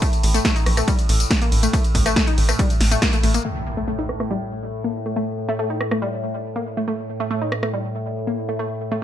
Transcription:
0.00 3.44 A2 medium
0.00 0.05 A3 medium
0.00 kick loud
0.00 closed hi-hat medium
0.00 ride medium
0.00 tambourine medium
0.13 closed hi-hat medium
0.13 ride medium
0.13 tambourine soft
0.23 0.40 A1 loud
0.23 open hi-hat loud
0.23 ride medium
0.34 0.37 A3 loud
0.34 closed hi-hat soft
0.34 ride medium
0.34 tambourine medium
0.45 0.52 A3 loud
0.45 kick loud
0.45 snare loud
0.45 closed hi-hat medium
0.45 ride medium
0.45 tambourine medium
0.56 0.63 D#4 medium
0.56 closed hi-hat medium
0.56 ride medium
0.56 tambourine soft
0.66 0.82 A#1 medium
0.66 cross-stick medium
0.66 open hi-hat medium
0.66 ride medium
0.77 0.84 A3 medium
0.77 cross-stick medium
0.77 closed hi-hat medium
0.77 ride medium
0.77 tambourine medium
0.88 0.93 G3 medium
0.88 kick loud
0.88 closed hi-hat medium
0.88 ride medium
0.88 tambourine medium
0.99 closed hi-hat medium
0.99 ride medium
0.99 tambourine soft
1.09 1.25 A1 loud
1.09 open hi-hat loud
1.09 ride medium
1.20 closed hi-hat medium
1.20 ride medium
1.20 tambourine medium
1.31 kick loud
1.31 snare loud
1.31 closed hi-hat medium
1.31 ride medium
1.31 tambourine medium
1.42 1.49 A#3 medium
1.42 closed hi-hat medium
1.42 ride medium
1.42 tambourine soft
1.52 1.68 A1 medium
1.52 open hi-hat medium
1.52 ride medium
1.63 1.70 A3 medium
1.63 closed hi-hat soft
1.63 ride medium
1.63 tambourine medium
1.73 1.76 A3 medium
1.73 kick loud
1.73 closed hi-hat medium
1.73 ride medium
1.73 tambourine medium
1.84 closed hi-hat medium
1.84 ride medium
1.84 tambourine soft
1.95 2.11 A1 medium
1.95 kick medium
1.95 open hi-hat loud
1.95 ride medium
2.06 2.09 A3 loud
2.06 cross-stick medium
2.06 closed hi-hat medium
2.06 ride medium
2.06 tambourine medium
2.16 2.24 A3 loud
2.16 kick loud
2.16 snare loud
2.16 closed hi-hat medium
2.16 ride medium
2.16 tambourine medium
2.27 2.34 D#4 medium
2.27 closed hi-hat medium
2.27 ride medium
2.27 tambourine soft
2.38 2.54 A1 medium
2.38 open hi-hat medium
2.38 ride medium
2.49 2.56 A3 medium
2.49 cross-stick medium
2.49 closed hi-hat medium
2.49 ride medium
2.49 tambourine medium
2.59 2.64 G3 medium
2.59 kick loud
2.59 closed hi-hat medium
2.59 ride medium
2.59 tambourine medium
2.70 closed hi-hat medium
2.70 ride medium
2.70 tambourine soft
2.81 2.97 A1 medium
2.81 snare medium
2.81 open hi-hat loud
2.81 ride medium
2.91 2.94 A3 loud
2.91 closed hi-hat medium
2.91 ride medium
2.91 tambourine medium
3.02 3.07 A#3 loud
3.02 kick loud
3.02 snare loud
3.02 closed hi-hat medium
3.02 ride medium
3.02 tambourine medium
3.13 3.16 A3 medium
3.13 closed hi-hat medium
3.13 ride medium
3.13 tambourine soft
3.23 3.39 A1 medium
3.23 3.28 A3 medium
3.23 open hi-hat medium
3.23 ride medium
3.34 3.37 A#3 medium
3.34 closed hi-hat medium
3.34 ride medium
3.34 tambourine medium
3.45 9.04 A2 medium
3.45 3.48 A3 medium
3.45 crash medium
3.45 impact medium
3.77 3.80 A3 loud
3.88 3.95 A3 loud
3.99 4.06 D#4 medium
4.09 cross-stick medium
4.20 4.27 A3 medium
4.20 cross-stick medium
4.31 4.36 G3 medium
4.84 4.92 A#3 medium
5.06 5.13 A3 medium
5.16 5.19 A3 medium
5.49 5.52 A3 loud
5.59 5.67 A3 loud
5.70 5.77 D#4 medium
5.81 cross-stick medium
5.91 5.99 A3 medium
5.91 cross-stick medium
6.02 6.07 G3 medium
6.56 6.63 A#3 medium
6.77 6.84 A3 medium
6.88 6.91 A3 medium
7.20 7.23 A3 loud
7.31 7.38 A3 loud
7.42 7.49 D#4 medium
7.52 cross-stick medium
7.63 7.70 A3 medium
7.63 cross-stick medium
7.74 7.78 G3 medium
8.27 8.34 A#3 medium
8.49 8.56 A3 medium
8.59 8.62 A3 medium
8.92 8.94 A3 loud

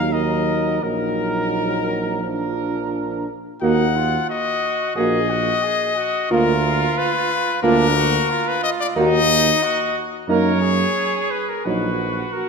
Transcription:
0.00 0.82 D#2 medium
0.00 0.12 F#3 medium
0.00 0.13 D#4 medium
0.00 0.13 A#4 medium
0.00 0.14 F5 medium
0.13 0.81 F#3 medium
0.13 0.81 D#4 medium
0.13 0.82 A#4 medium
0.13 0.85 D#5 medium
0.83 3.25 A#1 medium
0.83 2.25 F#3 medium
0.83 2.20 D#4 medium
0.83 2.93 A#4 medium
0.83 2.21 A#4 medium
2.23 3.29 F3 medium
2.23 3.27 D4 soft
2.23 3.27 A#4 medium
3.61 4.18 D#2 medium
3.61 3.85 A#3 medium
3.61 3.97 D#4 medium
3.61 3.85 F#4 medium
3.61 4.25 F#5 medium
3.96 4.31 F4 medium
4.29 4.96 F#4 medium
4.29 4.95 D#5 loud
4.96 5.52 A#1 medium
4.96 5.20 A#3 medium
4.96 5.19 F#4 medium
4.96 5.31 G#4 medium
4.96 6.28 D#5 loud
5.30 5.65 F#4 medium
5.63 5.96 G#4 medium
5.96 6.29 F#4 medium
6.30 6.86 D2 medium
6.30 6.54 A#3 medium
6.30 7.60 F4 medium
6.30 6.54 F4 medium
6.30 6.99 A#4 loud
6.98 7.63 B4 loud
7.62 8.18 D2 medium
7.62 7.86 A#3 medium
7.62 7.97 D4 medium
7.62 7.86 F4 medium
7.62 8.49 A#4 loud
7.96 8.31 F#4 medium
8.29 8.96 F4 medium
8.48 8.63 B4 medium
8.63 8.71 D#5 loud
8.80 8.88 D5 loud
8.96 9.51 D#2 medium
8.96 9.19 A#3 medium
8.96 9.64 D#4 medium
8.96 9.19 F#4 medium
8.96 9.99 D#5 loud
9.63 10.05 F#4 medium
10.28 10.85 F#2 medium
10.28 10.52 A#3 medium
10.28 10.52 D#4 medium
10.28 10.60 A#4 medium
10.28 11.33 C#5 loud
10.61 11.63 G#4 medium
11.31 11.51 B4 medium
11.49 11.67 A#4 medium
11.65 12.22 A#1 medium
11.65 11.90 F#3 medium
11.65 11.90 D#4 medium
11.65 12.49 F#4 medium
11.65 12.35 B4 medium
12.33 12.49 F#4 medium
12.33 12.49 A#4 medium

